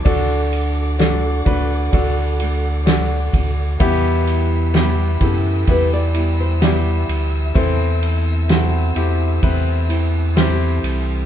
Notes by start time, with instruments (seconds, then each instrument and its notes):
Already playing: nylon-string guitar A4, string section D6
0.05 sub bass D2, steel-string acoustic guitar D3 A3 D4 F#4, grand piano D3 D4 F#4 A4, string section A4 D5 F#5, kick, ride
0.53 ride
0.98 steel-string acoustic guitar D3 A3 D4 F#4, grand piano D4 F#4 A4, snare, ride
1.37 nylon-string guitar G4
1.45 sub bass D2, steel-string acoustic guitar A3 D4 F#4, grand piano D4 F#4 B4, kick, ride
1.92 sub bass D2, steel-string acoustic guitar D3 A3 D4 F#4, grand piano D4 F#4 A4, kick, ride
2.39 steel-string acoustic guitar A3 D4 F#4, ride
2.86 steel-string acoustic guitar D3 A3 D4 F#4, grand piano D4 F#4 A4, snare, ride
3.33 sub bass D2, kick, ride
3.80 steel-string acoustic guitar E2 B2 E3 G3 B3 E4, sub bass E2, grand piano E3 B3 E4 G4, string section B4 E5 G5 E6, kick, ride
4.27 ride
4.73 steel-string acoustic guitar E3 G3 B3 E4, grand piano B3 E4 G4, snare, ride
5.20 sub bass F#2, steel-string acoustic guitar E3 B3 E4, grand piano B3 E4 G4, nylon-string guitar A4, kick, ride
5.67 sub bass E2, steel-string acoustic guitar E3 G3 B3 E4, grand piano B3 E4 G4, nylon-string guitar B4, kick, ride
5.93 nylon-string guitar D5
6.14 steel-string acoustic guitar E3 G3 B3 E4, ride
6.41 nylon-string guitar C5
6.61 steel-string acoustic guitar E3 G3 B3 E4, grand piano B3 E4 G4, nylon-string guitar D5, snare, ride
7.09 sub bass D2, ride
7.55 sub bass E2, steel-string acoustic guitar E3 A3 C4 E4, grand piano E3 C4 E4 A4, string section C4 A5, nylon-string guitar C5, kick, ride
8.03 ride
8.48 steel-string acoustic guitar E3 A3 C4 E4, grand piano C4 E4 F#4, nylon-string guitar A4, snare, ride
8.95 sub bass E2, steel-string acoustic guitar A3 C4 E4, grand piano C4 E4 G4, ride
9.42 sub bass E2, steel-string acoustic guitar E3 A3 C4 E4, grand piano C4 E4 B4, kick, ride
9.89 steel-string acoustic guitar A3 C4 E4, ride
10.36 steel-string acoustic guitar E3 A3 C4 E4, grand piano C4 E4 G4, snare, ride
10.83 sub bass C2, ride